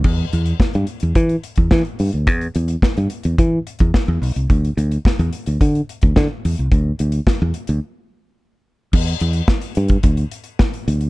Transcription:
<<
  \new Staff \with { instrumentName = "Fingered electric bass" } { \clef bass \time 4/4 \key e \minor \tempo 4 = 108 e,8 e,8 r16 g,16 r16 e,16 e8 r16 e,16 e16 r16 g,16 d,16 | e,8 e,8 r16 g,16 r16 e,16 e8 r16 e,16 r16 e,16 b,,16 c,16 | d,8 d,8 r16 e,16 r16 d,16 d8 r16 d,16 d16 r16 e,16 c,16 | d,8 d,8 r16 e,16 r16 d,16 r2 |
e,8 e,8 r8 g,8 d,8 r4 d,8 | }
  \new DrumStaff \with { instrumentName = "Drums" } \drummode { \time 4/4 <cymc bd>8 hh16 hh16 <bd sn>16 hh16 hh16 hh16 <hh bd>16 hh16 hh16 <hh bd>16 <bd sn>16 hh16 hho16 hh16 | <hh bd>16 hh16 hh16 hh16 <bd sn>16 hh16 hh16 hh16 <hh bd>8 hh16 <hh bd>16 <bd sn>8 hho16 hh16 | <hh bd>16 hh16 hh16 hh16 <bd sn>16 hh16 hh16 hh16 <hh bd>16 hh16 hh16 <hh bd>16 <bd sn>8 hho16 hh16 | <hh bd>8 hh16 hh16 <bd sn>8 hh16 hh16 r4 r4 |
<cymc bd>16 hh16 hh16 hh16 <bd sn>16 hh16 hh16 <hh bd>16 <hh bd>16 hh16 hh16 hh16 <bd sn>16 hh16 hh16 hh16 | }
>>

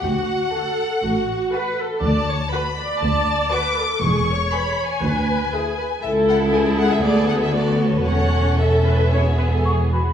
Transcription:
<<
  \new Staff \with { instrumentName = "Flute" } { \time 4/4 \key d \major \tempo 4 = 120 r1 | \key a \major r1 | r1 | r1 |
r2. cis'''8 b''8 | }
  \new Staff \with { instrumentName = "Violin section" } { \time 4/4 \key d \major fis''2.~ fis''8 r8 | \key a \major a''4 b''4 a''4 d'''4 | cis'''4 b''8. gis''2~ gis''16 | e''8 fis''8 gis''8 fis''16 e''16 d''8 fis''16 e''16 d''8 cis''16 b'16 |
fis''4 e''2 r4 | }
  \new Staff \with { instrumentName = "Viola section" } { \time 4/4 \key d \major fis'4 a'4 fis'4 b'8 a'8 | \key a \major d''8 cis''8 b'8 d''4. b'8 a'8 | gis'8 cis''4. b'4 gis'8 b'8 | a'4 gis'2 fis'4 |
cis''4 a'8 b'8 cis''8 b'16 a'16 gis'8 fis'8 | }
  \new Staff \with { instrumentName = "Violin section" } { \time 4/4 \key d \major r4 <fis' a'>4 r4 <fis' a'>4 | \key a \major r4 <fis' b'>4 r4 <fis' b'>4 | r4 <gis' b'>4 r4 <e' b'>4 | <e' a'>2 <b a'>4 <b a'>4 |
<cis' a'>4 <cis' a'>4 <b gis'>4. r8 | }
  \new Staff \with { instrumentName = "Cello section" } { \clef bass \time 4/4 \key d \major d,4 r4 a,4 r4 | \key a \major d,4 r4 d,4 r4 | e,4 r4 d,4 r4 | cis,2 d,2 |
e,2.~ e,8 r8 | }
  \new Staff \with { instrumentName = "Double bass section" } { \clef bass \time 4/4 \key d \major d,4 r4 a,,4 r4 | \key a \major d,4 r4 d,4 r4 | e,,4 r4 d,4 r4 | cis,2 d,2 |
e,,2.~ e,,8 r8 | }
>>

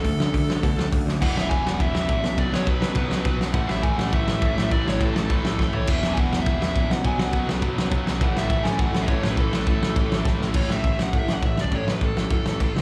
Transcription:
<<
  \new Staff \with { instrumentName = "Lead electric guitar" } { \time 4/4 \key e \mixolydian \tempo 4 = 206 a'2. r4 | fis''8 e''8 gis''8 fis''8 e''8 e''4. | d''8 cis''8 b'8 b'2 r8 | fis''8 e''8 gis''8 fis''8 e''8 e''4. |
d''8 cis''8 a'8 a'2 cis''8 | e''8. gis''16 fis''8. e''8. e''4 fis''8 | gis''8 fis''4 r2 r8 | fis''8 e''4 gis''8 fis''8. e''16 cis''8. b'16 |
a'2. r4 | cis''8 e''4 fis''8 e''8 fis''8 e''8 d''8 | cis''8 b'8 a'2~ a'8 r8 | }
  \new Staff \with { instrumentName = "Distorted electric guitar" } { \clef bass \time 4/4 \key e \mixolydian <d a>8 r8 <d a>8 r8 <d a>8 r8 <d a>8 r8 | <e, b, e>4 <e, b, e>4 <e, b, e>4 <e, b, e>8 r8 | <b, fis b>4 <b, fis b>4 <b, fis b>4 <b, fis b>4 | <a, e a>4 <a, e a>4 <a, e a>4 <a, e a>4 |
<a, e a>4 <a, e a>4 <a, e a>4 <a, e a>4 | <e, b, e>4 <e, b, e>4 <e, b, e>4 <e, b, e>8 r8 | <b, fis b>4 <b, fis b>4 <b, fis b>4 <b, fis b>4 | <a, e a>4 <a, e a>4 <a, e a>4 <a, e a>4 |
<a, e a>4 <a, e a>4 <a, e a>4 <a, e a>4 | <a, e a>4 <a, e>8 r8 <a, e>8 r8 <a, e>8 r8 | <a, e>8 r8 <a, e>8 r8 <a, e>8 r8 <a, e>8 r8 | }
  \new Staff \with { instrumentName = "Distorted electric guitar" } { \clef bass \time 4/4 \key e \mixolydian <d a>8 r8 <d a>8 r8 <d a>8 r8 <d a>8 r8 | <e, b, e>4 <e, b, e>4 <e, b, e>4 <e, b, e>8 r8 | <b, fis b>4 <b, fis b>4 <b, fis b>4 <b, fis b>4 | <a, e a>4 <a, e a>4 <a, e a>4 <a, e a>4 |
<a, e a>4 <a, e a>4 <a, e a>4 <a, e a>4 | <e, b, e>4 <e, b, e>4 <e, b, e>4 <e, b, e>8 r8 | <b, fis b>4 <b, fis b>4 <b, fis b>4 <b, fis b>4 | <a, e a>4 <a, e a>4 <a, e a>4 <a, e a>4 |
<a, e a>4 <a, e a>4 <a, e a>4 <a, e a>4 | r1 | r1 | }
  \new Staff \with { instrumentName = "Overdriven electric guitar" } { \clef bass \time 4/4 \key e \mixolydian <d a d'>2.~ <d a d'>8 r8 | <e, b, e>2~ <e, b, e>8 <e, b, e>8 <e, b, e>8 <b, fis b>8~ | <b, fis b>2 <b, fis b>8 <b, fis b>4 r8 | <a, e a>2~ <a, e a>8 <a, e a>8 <a, e a>4 |
<a, e a>2~ <a, e a>8 <a, e a>8 <a, e a>4 | <e, b, e>2~ <e, b, e>8 <e, b, e>8 <e, b, e>8 <b, fis b>8~ | <b, fis b>2 <b, fis b>8 <b, fis b>4 r8 | <a, e a>2~ <a, e a>8 <a, e a>8 <a, e a>4 |
<a, e a>2~ <a, e a>8 <a, e a>8 <a, e a>4 | <a, e a>1 | <a, e a>1 | }
  \new Staff \with { instrumentName = "Picked electric bass" } { \clef bass \time 4/4 \key e \mixolydian d,8 d,8 d,8 d,8 b,8 d,8 d,8 d,8 | e,,8 e,,8 e,,8 e,,8 e,,8 e,,8 a,,8 b,,8 | b,,8 b,,8 b,,8 b,,8 b,,8 b,,8 b,,8 b,,8 | a,,8 a,,8 a,,8 a,,8 a,,8 a,,8 a,,8 a,8 |
a,,8 a,,8 a,,8 a,,8 a,,8 a,,8 a,,8 a,,8 | e,,8 e,,8 e,,8 e,,8 e,,8 e,,8 bes,,8 b,,8 | b,,8 b,,8 b,,8 b,,8 b,,8 b,,8 b,,8 b,,8 | a,,8 a,,8 a,,8 a,,8 a,,8 a,,8 a,,8 a,8 |
a,,8 a,,8 a,,8 a,,8 a,,8 a,,8 a,,8 a,,8 | a,,8 a,8 a,,8 a,,8 a,8 a,,8 a,,4 | a,,8 a,,8 a,,8 a,,8 fis,8 a,,8 a,,8 cis,8 | }
  \new DrumStaff \with { instrumentName = "Drums" } \drummode { \time 4/4 <hho bd>8 sn8 <hho bd>8 sn8 <hho bd>8 sn8 <hho bd>8 sn8 | <cymc bd>8 sn8 <bd cymr>8 sn8 <bd cymr>8 sn8 <bd cymr>8 sn8 | <bd cymr>8 sn8 <bd cymr>8 sn8 <bd cymr>8 sn8 <bd cymr>8 sn8 | <bd cymr>8 sn8 <bd cymr>8 sn8 <bd cymr>8 sn8 <bd cymr>8 sn8 |
<bd cymr>8 sn8 <bd cymr>8 sn8 <bd cymr>8 sn8 <bd sn>8 tomfh8 | <cymc bd>8 sn8 <bd cymr>8 sn8 <bd cymr>8 sn8 <bd cymr>8 sn8 | <bd cymr>8 sn8 <bd cymr>8 sn8 <bd cymr>8 sn8 <bd cymr>8 sn8 | <bd cymr>8 sn8 <bd cymr>8 sn8 <bd cymr>8 sn8 <bd cymr>8 sn8 |
<bd cymr>8 sn8 <bd cymr>8 sn8 <bd cymr>8 sn8 <bd sn>8 sn8 | <cymc bd>8 sn8 <cymc bd>8 sn8 <cymc bd>8 sn8 <cymc bd>8 sn16 bd16 | <cymc bd>8 sn8 <cymc bd>8 sn8 <cymc bd>8 sn8 <cymc bd>8 sn8 | }
>>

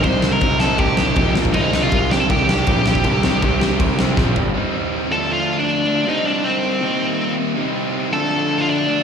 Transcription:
<<
  \new Staff \with { instrumentName = "Lead electric guitar" } { \time 4/4 \key c \dorian \tempo 4 = 159 <c'' c'''>8. <bes' bes''>8. <a' a''>8 <g' g''>4. r8 | <ees' ees''>8. <f' f''>8. <g' g''>16 <a' a''>16 <g' g''>2~ | <g' g''>2. r4 | r4. <a' a''>8 <f' f''>8. <d' d''>4~ <d' d''>16 |
<ees' ees''>8 <d' d''>8 <c' c''>2~ <c' c''>8 r8 | r4. <a' a''>4~ <a' a''>16 <f' f''>16 <d' d''>4 | }
  \new Staff \with { instrumentName = "Distorted electric guitar" } { \clef bass \time 4/4 \key c \dorian <c g c' ees'>4. <c g c' ees'>4. <c g c' ees'>8 r8 | <c ees g c' g'>4. <c ees g c' g'>4. <c ees g c' g'>4 | <c ees g c' g'>4. <c ees g c' g'>4. <c ees g c' g'>8 r8 | <c g c' ees'>8 <c g c' ees'>8 <c g c' ees'>8 <d f a d'>8 <d f a d'>8 <d f a d'>8 <d f a d'>8 <d f a d'>8 |
<c g c' ees'>8 <c g c' ees'>8 <c g c' ees'>8 <c g c' ees'>8 <ees g bes ees'>8 <ees g bes ees'>8 <ees g bes ees'>8 <ees g bes ees'>8 | <c g c' ees'>8 <c g c' ees'>8 <c g c' ees'>8 <d f a d'>8 <d f a d'>8 <d f a d'>8 <d f a d'>8 <d f a d'>8 | }
  \new Staff \with { instrumentName = "Overdriven electric guitar" } { \clef bass \time 4/4 \key c \dorian <c g c'>8 <c g c'>8 <c g c'>8 <c g c'>8 <c g c'>8 <c g c'>8 <c g c'>8 <bes, f bes>8 | <c g c'>8 <c g c'>8 <c g c'>8 <c g c'>8 <c g c'>8 <c g c'>8 <c g c'>8 <c g c'>8 | <c g c'>8 <c g c'>8 <c g c'>8 <c g c'>8 <c g c'>8 <c g c'>8 <c g c'>8 <g, d g>8 | <c g c'>4. <d a d'>2~ <d a d'>8 |
<c g c'>2 <ees bes ees'>2 | <c g c'>4. <d a d'>2~ <d a d'>8 | }
  \new Staff \with { instrumentName = "Overdriven electric guitar" } { \clef bass \time 4/4 \key c \dorian <c g c' ees'>8 <c g c' ees'>8 <c g c' ees'>8 <c g c' ees'>8 <c g c' ees'>8 <c g c' ees'>8 <c g c' ees'>8 <bes, f bes f'>8 | <c ees g c' g'>8 <c ees g c' g'>8 <c ees g c' g'>8 <c ees g c' g'>8 <c ees g c' g'>8 <c ees g c' g'>8 <c ees g c' g'>8 <c ees g c' g'>8 | <c ees g c' g'>8 <c ees g c' g'>8 <c ees g c' g'>8 <c ees g c' g'>8 <c ees g c' g'>8 <c ees g c' g'>8 <c ees g c' g'>8 <g d' g' d''>8 | <c g c' ees'>4. <d f a d'>2 <d f a d'>8 |
<c g c' ees'>2 <ees g bes ees'>2 | <c g c' ees'>4. <d f a d'>2 <d f a d'>8 | }
  \new Staff \with { instrumentName = "Picked electric bass" } { \clef bass \time 4/4 \key c \dorian c,8 c,8 c,4 c,8 c,8 bes,,8 bes,,8 | c,8 c,8 c,4 c,8 c,8 bes,,4 | c,8 c,8 c,4 c,8 c,8 bes,,8 g,,8 | r1 |
r1 | r1 | }
  \new DrumStaff \with { instrumentName = "Drums" } \drummode { \time 4/4 <cymc bd>8 sn8 <cymc bd>8 sn8 <cymc bd>8 sn8 <cymc bd>8 sn16 bd16 | <cymc bd>8 sn8 <cymc bd>8 sn8 <cymc bd>8 sn8 <cymc bd>8 sn16 bd16 | <cymc bd>8 sn8 <cymc bd>8 sn8 <cymc bd>8 sn8 <bd sn>8 tomfh8 | r4 r4 r4 r4 |
r4 r4 r4 r4 | r4 r4 r4 r4 | }
>>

